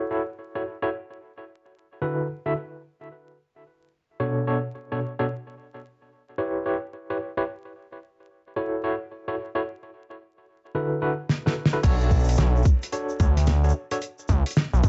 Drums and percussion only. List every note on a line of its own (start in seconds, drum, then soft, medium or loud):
11.29 snare medium
11.47 snare medium
11.66 snare loud
11.83 kick loud
11.83 closed hi-hat medium
11.83 crash loud
11.83 shaker medium
12.00 shaker soft
12.11 kick medium
12.11 shaker soft
12.15 shaker soft
12.20 shaker medium
12.24 shaker medium
12.28 closed hi-hat medium
12.28 shaker medium
12.31 shaker medium
12.33 shaker medium
12.36 shaker medium
12.38 snare loud
12.38 closed hi-hat medium
12.38 shaker medium
12.56 shaker soft
12.62 shaker soft
12.65 kick loud
12.65 shaker medium
12.82 closed hi-hat medium
12.82 shaker soft
12.92 closed hi-hat medium
12.92 shaker medium
13.09 shaker soft
13.20 kick loud
13.20 shaker medium
13.37 snare soft
13.37 closed hi-hat medium
13.37 shaker soft
13.47 snare loud
13.47 closed hi-hat medium
13.47 shaker medium
13.64 shaker soft
13.69 shaker medium
13.91 closed hi-hat medium
13.91 shaker soft
14.02 closed hi-hat medium
14.02 shaker medium
14.19 shaker soft
14.28 kick medium
14.28 cross-stick soft
14.28 shaker medium
14.46 closed hi-hat medium
14.46 shaker soft
14.51 closed hi-hat medium
14.56 snare loud
14.56 shaker medium
14.74 shaker soft
14.84 kick loud
14.84 shaker medium